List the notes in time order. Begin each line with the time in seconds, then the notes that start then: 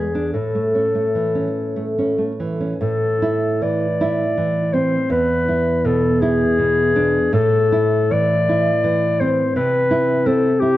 Already playing: E2 G#4
0.15 D4
0.33 A2 A4
0.55 A3
0.74 C#4
0.95 A3
1.15 E3
1.35 C#4
1.76 A3
1.98 C#4
2.18 A3
2.40 E3
2.60 C#4
2.81 A2 A4
3.22 E4
3.62 E3 D5
4.01 E4
4.37 E3
4.73 C4 C5
5.10 E2 B4
5.48 E4
5.85 B2 A4
6.21 E4 G#4
6.58 B2
6.95 D4
7.33 A2 A4
7.72 E4
8.11 E3 D5
8.49 E4
8.84 E3
9.21 C4 C5
9.56 C3 B4
9.91 E4
10.26 C4 A4
10.60 E4 G4